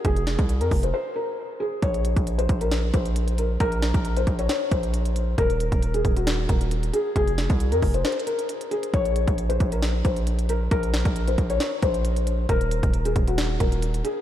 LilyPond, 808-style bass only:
\new Staff \with { instrumentName = "808-style bass" } { \clef bass \time 4/4 \key bes \minor \tempo 4 = 135 f,,8. c,8 f,16 f,,8 r2 | bes,,8. bes,,8. bes,,4 bes,,4. | bes,,8. bes,,8. bes,,8 r8 bes,,4. | ees,,8. ees,,8. ees,,4 ees,,4 r8 |
f,,8. c,8 f,16 f,,8 r2 | bes,,8. bes,,8. bes,,4 bes,,4. | bes,,8. bes,,8. bes,,8 r8 bes,,4. | ees,,8. ees,,8. ees,,4 ees,,4 r8 | }